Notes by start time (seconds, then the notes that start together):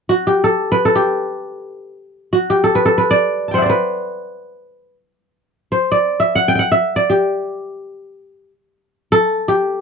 0.09 F#4
0.27 G4
0.44 A4
0.72 B4
0.85 A4
0.95 G4
2.33 F#4
2.50 G4
2.64 A4
2.75 B4
2.86 A4
2.98 B4
3.11 D5
3.48 G5 A5
3.54 C5 F#5
3.58 D5 E5
3.66 B4 C5
5.72 C5
5.92 D5
6.20 E5
6.35 F#5
6.48 G5
6.55 F#5 G5
6.72 E5
6.96 D5
7.10 G4
9.12 A4
9.48 G4